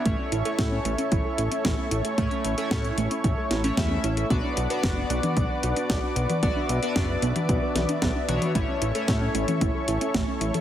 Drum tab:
HH |x-xxx-xxx-xxx-xx|xxxxxxxxx-xxx-xx|x-xxx-xxx-xxx-xx|x-xxx-xxx-xxx-xx|
SD |----o-------o---|----o-----o-o---|----o-------o---|----o-----o-o---|
T1 |----------------|----------------|-------o-------o|-------o--o---oo|
BD |o---o---o---o---|o---o---o---o---|o---o---o---o---|o---o---o---o---|

HH |x-xxx-xxx-xxx-xx|
SD |----o-------o---|
T1 |-------o-------o|
BD |o---o---o---o---|